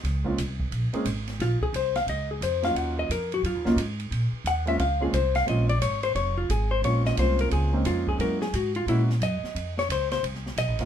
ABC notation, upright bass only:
X:1
M:4/4
L:1/8
Q:"Swing" 1/4=176
K:Bbm
V:1 name="Upright bass" clef=bass
D,,2 C,,2 B,,, z A,,,2 | B,,, z C,,2 D,,2 F,,2 | E,,2 F,,2 (3G,, E,, D,, A,,2 | B,, z E,,2 D,,2 C,,2 |
B,,,2 A,,,2 F,,,2 A,,,2 | B,,,2 C,,2 D,,2 F,,2 | G,,2 A,,2 B,,2 G,, z | F,,2 D,,2 C,,2 (3_C,, =A,,, F,,, |]